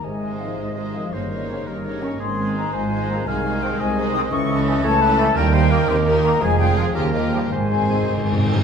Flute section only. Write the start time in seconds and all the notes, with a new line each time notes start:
0.04 G#5
0.40 F5
0.58 D#5
0.94 F5
1.12 D#5
1.49 C#5
1.66 D#5
1.84 C#5
2.02 C#6
2.20 C6
2.56 A#5
2.73 G#5
3.09 A#5
3.27 G#5
3.62 G5
3.80 G#5
4.14 D#6
4.32 C#6
4.83 A5
5.36 G5
5.89 C5
6.07 A#4
6.24 A#5
6.41 G#5
6.59 G5
6.76 F5
6.94 C#5
7.12 D#5
7.31 G5
7.51 G#5